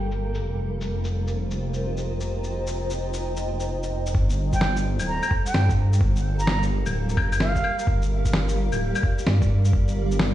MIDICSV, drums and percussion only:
0, 0, Header, 1, 2, 480
1, 0, Start_track
1, 0, Key_signature, -2, "minor"
1, 0, Tempo, 465116
1, 441, Time_signature, 4, 2, 24, 8
1, 10673, End_track
2, 0, Start_track
2, 0, Title_t, "Drums"
2, 118, Note_on_c, 9, 82, 27
2, 221, Note_off_c, 9, 82, 0
2, 356, Note_on_c, 9, 82, 48
2, 459, Note_off_c, 9, 82, 0
2, 836, Note_on_c, 9, 82, 49
2, 939, Note_off_c, 9, 82, 0
2, 1077, Note_on_c, 9, 82, 40
2, 1180, Note_off_c, 9, 82, 0
2, 1315, Note_on_c, 9, 82, 47
2, 1419, Note_off_c, 9, 82, 0
2, 1557, Note_on_c, 9, 82, 39
2, 1660, Note_off_c, 9, 82, 0
2, 1794, Note_on_c, 9, 82, 48
2, 1897, Note_off_c, 9, 82, 0
2, 2035, Note_on_c, 9, 82, 27
2, 2138, Note_off_c, 9, 82, 0
2, 2275, Note_on_c, 9, 82, 50
2, 2378, Note_off_c, 9, 82, 0
2, 2515, Note_on_c, 9, 82, 28
2, 2619, Note_off_c, 9, 82, 0
2, 2753, Note_on_c, 9, 82, 51
2, 2856, Note_off_c, 9, 82, 0
2, 2994, Note_on_c, 9, 82, 41
2, 3097, Note_off_c, 9, 82, 0
2, 3236, Note_on_c, 9, 82, 50
2, 3340, Note_off_c, 9, 82, 0
2, 3475, Note_on_c, 9, 82, 40
2, 3578, Note_off_c, 9, 82, 0
2, 3715, Note_on_c, 9, 82, 51
2, 3818, Note_off_c, 9, 82, 0
2, 3954, Note_on_c, 9, 82, 29
2, 4058, Note_off_c, 9, 82, 0
2, 4194, Note_on_c, 9, 82, 54
2, 4279, Note_on_c, 9, 36, 115
2, 4297, Note_off_c, 9, 82, 0
2, 4382, Note_off_c, 9, 36, 0
2, 4434, Note_on_c, 9, 82, 32
2, 4538, Note_off_c, 9, 82, 0
2, 4674, Note_on_c, 9, 82, 57
2, 4675, Note_on_c, 9, 36, 60
2, 4758, Note_on_c, 9, 38, 102
2, 4777, Note_off_c, 9, 82, 0
2, 4778, Note_off_c, 9, 36, 0
2, 4861, Note_off_c, 9, 38, 0
2, 4917, Note_on_c, 9, 82, 47
2, 5020, Note_off_c, 9, 82, 0
2, 5154, Note_on_c, 9, 75, 37
2, 5154, Note_on_c, 9, 82, 57
2, 5257, Note_off_c, 9, 75, 0
2, 5257, Note_off_c, 9, 82, 0
2, 5394, Note_on_c, 9, 75, 55
2, 5394, Note_on_c, 9, 82, 47
2, 5479, Note_on_c, 9, 36, 104
2, 5498, Note_off_c, 9, 75, 0
2, 5498, Note_off_c, 9, 82, 0
2, 5582, Note_off_c, 9, 36, 0
2, 5637, Note_on_c, 9, 82, 59
2, 5721, Note_on_c, 9, 38, 106
2, 5741, Note_off_c, 9, 82, 0
2, 5824, Note_off_c, 9, 38, 0
2, 5876, Note_on_c, 9, 36, 107
2, 5881, Note_on_c, 9, 82, 33
2, 5979, Note_off_c, 9, 36, 0
2, 5984, Note_off_c, 9, 82, 0
2, 6119, Note_on_c, 9, 82, 61
2, 6199, Note_on_c, 9, 36, 119
2, 6222, Note_off_c, 9, 82, 0
2, 6302, Note_off_c, 9, 36, 0
2, 6359, Note_on_c, 9, 82, 32
2, 6462, Note_off_c, 9, 82, 0
2, 6598, Note_on_c, 9, 82, 58
2, 6680, Note_on_c, 9, 38, 107
2, 6701, Note_off_c, 9, 82, 0
2, 6783, Note_off_c, 9, 38, 0
2, 6840, Note_on_c, 9, 82, 46
2, 6943, Note_off_c, 9, 82, 0
2, 7080, Note_on_c, 9, 75, 37
2, 7080, Note_on_c, 9, 82, 57
2, 7183, Note_off_c, 9, 75, 0
2, 7183, Note_off_c, 9, 82, 0
2, 7319, Note_on_c, 9, 82, 46
2, 7400, Note_on_c, 9, 75, 68
2, 7402, Note_on_c, 9, 36, 108
2, 7422, Note_off_c, 9, 82, 0
2, 7504, Note_off_c, 9, 75, 0
2, 7505, Note_off_c, 9, 36, 0
2, 7558, Note_on_c, 9, 75, 62
2, 7558, Note_on_c, 9, 82, 58
2, 7640, Note_on_c, 9, 38, 111
2, 7661, Note_off_c, 9, 75, 0
2, 7661, Note_off_c, 9, 82, 0
2, 7743, Note_off_c, 9, 38, 0
2, 7798, Note_on_c, 9, 36, 64
2, 7799, Note_on_c, 9, 82, 32
2, 7883, Note_on_c, 9, 75, 53
2, 7902, Note_off_c, 9, 36, 0
2, 7902, Note_off_c, 9, 82, 0
2, 7987, Note_off_c, 9, 75, 0
2, 8038, Note_on_c, 9, 82, 61
2, 8122, Note_on_c, 9, 36, 126
2, 8141, Note_off_c, 9, 82, 0
2, 8226, Note_off_c, 9, 36, 0
2, 8279, Note_on_c, 9, 82, 31
2, 8382, Note_off_c, 9, 82, 0
2, 8519, Note_on_c, 9, 36, 65
2, 8519, Note_on_c, 9, 82, 57
2, 8601, Note_on_c, 9, 38, 109
2, 8622, Note_off_c, 9, 36, 0
2, 8622, Note_off_c, 9, 82, 0
2, 8704, Note_off_c, 9, 38, 0
2, 8760, Note_on_c, 9, 82, 46
2, 8863, Note_off_c, 9, 82, 0
2, 9001, Note_on_c, 9, 75, 35
2, 9001, Note_on_c, 9, 82, 55
2, 9105, Note_off_c, 9, 75, 0
2, 9105, Note_off_c, 9, 82, 0
2, 9240, Note_on_c, 9, 75, 50
2, 9240, Note_on_c, 9, 82, 45
2, 9323, Note_on_c, 9, 36, 111
2, 9343, Note_off_c, 9, 75, 0
2, 9343, Note_off_c, 9, 82, 0
2, 9426, Note_off_c, 9, 36, 0
2, 9479, Note_on_c, 9, 82, 55
2, 9562, Note_on_c, 9, 38, 112
2, 9583, Note_off_c, 9, 82, 0
2, 9665, Note_off_c, 9, 38, 0
2, 9720, Note_on_c, 9, 36, 110
2, 9720, Note_on_c, 9, 82, 31
2, 9823, Note_off_c, 9, 36, 0
2, 9823, Note_off_c, 9, 82, 0
2, 9957, Note_on_c, 9, 82, 59
2, 10044, Note_on_c, 9, 36, 121
2, 10060, Note_off_c, 9, 82, 0
2, 10147, Note_off_c, 9, 36, 0
2, 10197, Note_on_c, 9, 82, 31
2, 10301, Note_off_c, 9, 82, 0
2, 10438, Note_on_c, 9, 82, 55
2, 10520, Note_on_c, 9, 38, 111
2, 10541, Note_off_c, 9, 82, 0
2, 10624, Note_off_c, 9, 38, 0
2, 10673, End_track
0, 0, End_of_file